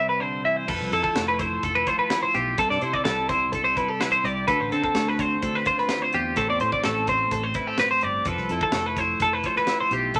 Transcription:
Already playing: C3 G3 C4
0.09 B4
0.20 D3 C5
0.45 E3 E5
0.56 C5
0.68 F1 F3 A4 B4, kick, crash
0.80 C2, snare
0.92 F2 E4 A4, closed hi-hat
1.04 A4, kick
1.15 F1 A3, snare, closed hi-hat
1.28 B4
1.39 E4 C5, kick, closed hi-hat
1.63 F1 A4, kick, closed hi-hat
1.75 B4
1.87 F4 C5, kick, closed hi-hat
1.99 B4
2.10 E4, snare, closed hi-hat
2.23 C5
2.34 B1 F4 G4, closed hi-hat
2.58 C2 C3 A4, kick, closed hi-hat
2.70 G2 D5, snare
2.81 C3 E4 C5, closed hi-hat
2.93 D5, kick
3.05 C2 G3 A4, snare, closed hi-hat
3.29 E4 C5, kick, closed hi-hat
3.52 C2 A4, kick, closed hi-hat
3.64 C5
3.76 E4 B4, kick, closed hi-hat
3.88 G4 A4
4.00 E4 B4, snare, closed hi-hat
4.12 C5
4.24 C2 G4 D5, closed hi-hat
4.47 D2 D3 A4 B4, kick, closed hi-hat
4.60 A1 C5
4.72 D3 C4 A4, closed hi-hat
4.84 A4, kick
4.95 D2 A3, snare, closed hi-hat
5.08 B4
5.19 C4 C5, kick, closed hi-hat
5.42 D2 A4 C5, kick, closed hi-hat
5.55 B4
5.65 F4 C5, kick, closed hi-hat
5.78 B4, snare
5.89 C4, snare, closed hi-hat
6.02 C5
6.12 E2 F4 G4, closed hi-hat
6.36 A1 A2 A3 C4 G4 A4 C5, kick, closed hi-hat
6.50 E2 D5
6.60 A2 C4 C5, closed hi-hat
6.72 D5, kick
6.83 A1 A3 A4, snare, closed hi-hat
7.07 C4 C5, kick, closed hi-hat
7.31 A1 A4 C5, kick, closed hi-hat
7.44 C5
7.54 E4 B4, kick, closed hi-hat
7.67 G4 A4
7.78 C4 B4, snare, closed hi-hat
7.91 C5
8.01 G1 G4 D5, closed hi-hat
8.25 F1 F3 A4 B4, kick, closed hi-hat
8.37 C2, snare
8.49 F2 E4 A4, closed hi-hat
8.61 A4, kick
8.72 F1 A3, snare, closed hi-hat
8.86 B4
8.97 E4 C5, kick, snare, closed hi-hat
9.20 F1 A4, kick, closed hi-hat
9.33 B4
9.43 F4 C5, kick, closed hi-hat
9.56 B4, snare
9.67 E4, snare, closed hi-hat
9.81 C5
9.91 B1 F4 G4, closed hi-hat
10.14 C2 C3 A4, kick, closed hi-hat

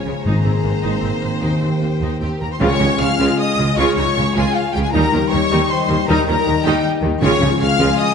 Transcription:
Already playing: C#3 F3 G#3 C#4 G#4 C#5 G#5
0.05 C#2 C#3 G#3 F4
0.24 G#1 G#2 D#3 A#3 C4 D#4 C5 A#5
0.44 G#1 G#2 C4 G#4
0.62 G#1 G#2 A#3 C4
0.82 G#1 G#2 A#3 D#4
1.01 G#1 G#2 C4
1.21 G#1 G#2 A#3 G#4
1.40 D#2 D#3 D#4 G4 G5
1.62 D#2 C4 G4
1.81 D#2 A#3 C4
2.01 D#2 A#3 D#4
2.20 D#2 C4 G4 G5
2.39 D#2 A#3 G4 A#4 A#5
2.52 C5 C6
2.58 C#2 C#3 G#3 F4 C#5
2.63 C#6
2.71 C#4
2.80 C#2 C#3 G3 G#3 D#4
2.91 F4
2.99 C#2 C#3 G#3 F4 F5 F6
3.11 G#4
3.19 C#2 C#3 G#3 F4 F5
3.30 G#4
3.39 D#5 F5 D#6
3.49 G#4
3.58 C#2 C#3 G#3 F4
3.68 G#3
3.77 C#2 C#3 G#3 F4 C#5 C#6
3.88 C#4
3.97 C#2 C#3 G3 G#3 D#4 C#5 C#6
4.07 F4
4.17 C#2 C#3 G#3 F4
4.27 G#4
4.35 C#2 C#3 G#3 F4 G#4 F5 G#5
4.46 G#4
4.53 G#3 F4 F5
4.65 G#4
4.73 C#2 C#3 G#3 F4 G4 G5
4.83 G#3 G#4 G#5
4.92 D#2 D#3 G3 D#4 A#4 A#5
5.04 G3
5.13 D#2 D#3 F3 C#4 D#4
5.22 G4
5.30 D#2 D#3 G3 D#4 C#5 C#6
5.42 D#5
5.50 D#2 D#3 G3 D#4 G5
5.60 D#5
5.70 C5 G5 C6
5.80 D#5
5.89 D#2 D#3 G3 D#4 G4
5.99 D#4
6.08 D#2 D#3 G3 D#4 A#4 A#5
6.18 G3
6.27 D#2 D#3 F3 C#4 D#4 A#4 A#5
6.37 G4
6.46 D#2 D#3 G3 D#4
6.56 D#5
6.64 D#2 D#3 G3 D#4 G4 G5
6.75 D#5
6.85 G5
6.95 D#5
7.02 D#2 D#3 G3 D#4 G4
7.14 D#4
7.21 C#2 C#3 G#3 F4 C#5 C#6
7.33 C#4
7.41 C#2 C#3 F3 G3 D#4
7.52 F4
7.60 C#2 C#3 G#3 F4 G#4 F5 F6
7.70 F4
7.79 C#2 C#3 G#3 F4 F5
7.90 G#5
7.98 D#5 F5 D#6
8.09 F4

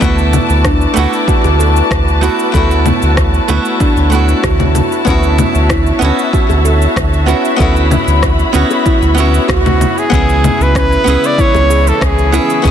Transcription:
Already playing: A5
0.00 D2 A3 B3 E4 F#4 B4 D5, kick, shaker
0.04 F#4
0.18 shaker
0.33 low conga, shaker
0.50 D2, shaker
0.65 D4, kick, cross-stick, shaker
0.81 shaker
0.94 D2 A3 B3 E4, shaker
0.99 F#4
1.13 shaker
1.28 F#4, kick, shaker
1.44 D2, high bongo, shaker
1.59 A4, shaker
1.76 shaker
1.91 D2, kick, cross-stick, shaker
2.08 shaker
2.21 A3 B3 E4 F#4, shaker
2.39 shaker
2.52 D2 A3 B3 E4 A4 C#5, kick, shaker
2.57 F#4
2.71 shaker
2.85 B3, low conga, shaker
3.02 D2, shaker
3.17 kick, cross-stick, shaker
3.34 shaker
3.48 D2 A3 B3 E4 F#4, shaker
3.65 shaker
3.80 D4, kick, shaker
3.97 D2, shaker
4.10 A3 B3 E4, shaker
4.15 F#4
4.29 shaker
4.43 D2 F#4, kick, cross-stick, high bongo, shaker
4.60 low conga, shaker
4.75 low conga, shaker
4.92 shaker
5.05 D2 B3 C#4 E4 F#4 E5, kick, shaker
5.10 F#4
5.23 shaker
5.38 low conga, shaker
5.55 D2, shaker
5.69 E4, kick, cross-stick, shaker
5.86 shaker
5.99 D2 B3 C#4 E4, shaker
6.04 F#4
6.19 shaker
6.33 F#4, kick, shaker
6.50 D2, high bongo, shaker
6.65 A4, shaker
6.82 shaker
6.96 D2, kick, cross-stick, shaker
7.13 shaker
7.26 B3 C#4 E4 F#4, shaker
7.45 shaker
7.56 D2 B3 C#4 E4 A4 B5, kick, shaker
7.62 F#4
7.76 shaker
7.91 C#4, low conga, shaker
8.07 D2, shaker
8.23 kick, cross-stick, shaker
8.39 shaker
8.53 D2 B3 C#4 E4 F#4, shaker
8.71 high bongo, shaker
8.86 E4, kick, shaker
9.02 D2, shaker
9.15 B3 C#4 E4, shaker
9.20 F#4
9.34 shaker
9.48 D2 F#4, kick, cross-stick, high bongo, shaker
9.66 low conga, shaker
9.81 low conga, shaker
9.98 G#4, shaker
10.10 C#2 C#3 E3 G#3 B3 C#4 E4, kick, shaker
10.15 G#4
10.29 shaker
10.44 low conga, shaker
10.60 C#2 B4, shaker
10.75 C#4 B4, kick, cross-stick, shaker
10.92 shaker
11.04 C#2 B3 C#4 E4, shaker
11.09 G#4
11.24 D5, shaker
11.38 E4 C#5, kick, shaker
11.55 C#2, high bongo, shaker
11.70 G#4, shaker
11.87 A4, shaker
12.01 C#2 G#4, kick, cross-stick, shaker
12.19 shaker
12.32 B3 C#4 E4 G#4, shaker
12.50 shaker
12.62 C#2 B3 C#4 E4 G#4, kick, shaker
12.66 G#4

